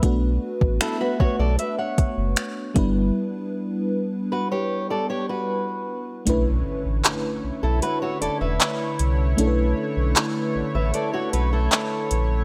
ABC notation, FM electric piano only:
X:1
M:4/4
L:1/8
Q:1/4=77
K:Bm
V:1 name="FM electric piano"
[A,B,DFB]6- [A,B,DFB] [G,B,DEB]- | [G,B,DEB]6- [G,B,DEB] z | [A,CDEB]8 | [A,CDEAB]8 |]